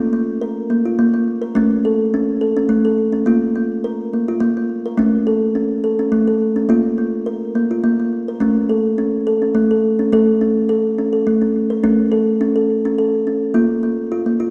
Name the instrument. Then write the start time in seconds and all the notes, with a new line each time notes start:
kalimba
Already playing: A#3 F4
0.13 A#3
0.41 A#4
0.70 A#3
0.85 F4
0.99 A#3
1.14 A#3
1.42 A#4
1.55 A3 C#4
1.85 A4
2.14 C#4
2.41 A4
2.57 C#4
2.69 A3
2.85 A4
3.12 C#4
3.26 A#3 F4
3.56 A#3
3.84 A#4
4.13 A#3
4.28 F4
4.40 A#3
4.57 A#3
4.86 A#4
4.97 A3 C#4
5.27 A4
5.55 C#4
5.84 A4
5.99 C#4
6.12 A3
6.28 A4
6.56 C#4
6.69 A#3 F4
6.98 A#3
7.26 A#4
7.55 A#3
7.71 F4
7.84 A#3
8.00 A#3
8.28 A#4
8.40 A3 C#4
8.69 A4
8.98 C#4
9.27 A4
9.42 C#4
9.55 A3
9.71 A4
9.99 C#4
10.12 A3 A4
10.41 C#4
10.69 A4
10.98 C#4
11.13 A4
11.27 A3
11.42 C#4
11.70 A#4
11.84 A3 C#4
12.12 A4
12.41 C#4
12.56 A4
12.85 C#4
12.98 A4
13.27 C#4
13.54 A#3 F4
13.83 A#3
14.12 F4
14.26 A#3
14.40 F4